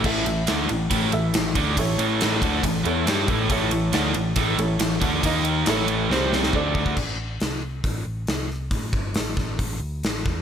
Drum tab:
CC |x---------------|----------------|----------------|----------------|
RD |--x-x-x-x-x-x-x-|x-x-x-x-x-x-x-x-|x-x-x-x-x-x-x-x-|x-x-x-x---------|
HH |----------------|----------------|----------------|----------------|
SD |----o-------o---|----o-------o---|----o-------o---|----o---o-oo----|
BD |o-------o-----o-|o-----o-o-----o-|o-------o-----o-|o-----------o-oo|

CC |x---------------|----------------|
RD |----------------|----------------|
HH |----o---o---o---|o---o---o---o---|
SD |----o-------o-o-|----o-o-----o-o-|
BD |o-------o-------|o-o---o-o-----o-|